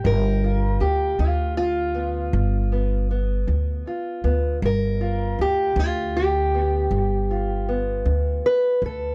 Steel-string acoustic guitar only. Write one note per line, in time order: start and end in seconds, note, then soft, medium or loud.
0.00 0.44 G4 soft
0.04 0.73 G2 medium
0.04 0.81 A#4 loud
0.44 1.20 F4 medium
0.81 1.19 G4 loud
1.18 1.87 D3 medium
1.18 1.56 F4 medium
1.57 3.09 F4 loud
1.95 2.71 B3 soft
2.33 3.02 G2 medium
2.72 3.10 B3 soft
3.11 4.23 B3 soft
3.47 4.16 D3 medium
3.87 4.58 F4 soft
4.24 4.57 B3 soft
4.62 5.31 G2 medium
4.62 5.40 A#4 loud
5.01 5.77 F4 medium
5.41 5.78 G4 loud
5.77 6.45 D3 medium
5.77 6.16 F4 medium
6.17 7.68 G4 loud
6.54 7.67 B3 soft
7.31 9.15 F4 soft
7.69 9.15 B3 soft
8.06 8.74 D3 medium
8.46 8.83 B4 loud
8.86 9.15 A4 medium